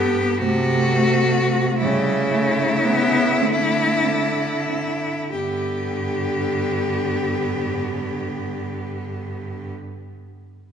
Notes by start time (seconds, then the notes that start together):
Already playing: G2 B3 G4
0.38 C3 A3 F#4
0.87 A3
1.33 A3
1.80 C#3 G3 A3 E4
2.31 A3
2.84 A3 B3
3.40 D3 A3 C4
4.02 C4
4.69 C4
5.33 G2 D3 B3 G4